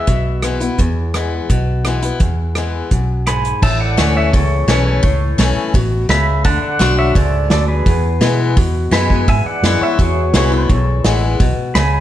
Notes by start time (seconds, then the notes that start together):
Already playing: E5
0.07 B1 B2, kick, closed hi-hat
0.42 E3 G#3 B3 E4, cross-stick, closed hi-hat
0.60 B3 E4, closed hi-hat
0.78 E2, kick, closed hi-hat
1.14 E3 G#3 B3 E4, cross-stick, closed hi-hat
1.49 B1 B2, kick, closed hi-hat
1.85 E3 G#3 B3 E4, cross-stick, closed hi-hat
2.02 B3 E4, closed hi-hat
2.20 E2, kick, closed hi-hat
2.55 E3 G#3 B3 E4, cross-stick, closed hi-hat
2.91 B1 F#2, kick, closed hi-hat
3.27 G#2 G#5 B5, cross-stick, closed hi-hat
3.45 closed hi-hat
3.62 A1 A2 E5 A5, kick, crash
3.81 D5 F#5
3.97 D2 E3 A3 C#4 E4, snare, open hi-hat
4.16 C#5 E5
4.33 C#2 E2 A4 C#5, kick, open hi-hat
4.67 B1 E3 A3 C#4 E4 A4 C#5, snare, open hi-hat
4.87 A4 C#5
5.03 C#2 A2, kick, open hi-hat
5.38 B1 E3 A3 C#4 E4, snare, open hi-hat
5.56 muted fingered electric bass stroke
5.74 A1 B2, kick, open hi-hat
6.09 C#2 C#3 E5 B5, snare, open hi-hat
6.45 D2 D3 F#5 A5, kick, open hi-hat
6.62 D5 F#5, muted fingered electric bass stroke
6.79 B1 D3 A3 D4 F#4, snare, open hi-hat
6.99 C#5 E5
7.15 C#2 G#2 A4 D5, kick, open hi-hat
7.50 D2 F#2 A4 D5, snare, open hi-hat
7.68 G#4 B4
7.86 E2, kick, open hi-hat
8.21 B2 E3 G#3 B3 E4, snare, open hi-hat
8.57 E2 B2, kick, open hi-hat
8.91 F#2 E3 G#3 B3 E4 G#5 B5, snare, open hi-hat
9.10 kick
9.28 E2 G#2 E5 G#5, kick, open hi-hat
9.45 D5 F#5, muted fingered electric bass stroke
9.63 F#2 E3 G#3 B3 E4, snare, open hi-hat
9.81 C#5 E5, muted fingered electric bass stroke
9.99 E2 B2 G#4 C#5, kick, open hi-hat
10.34 C2 E3 G#3 B3 E4 G#4 C#5, snare, open hi-hat
10.52 B3 E4 A4 C#5
10.69 B1 E2, kick, open hi-hat
11.04 A1 E3 G#3 B3 E4, snare, open hi-hat
11.40 B1 B2, kick, open hi-hat
11.57 muted fingered electric bass stroke
11.75 C#2 C#3 G#5 B5, snare, open hi-hat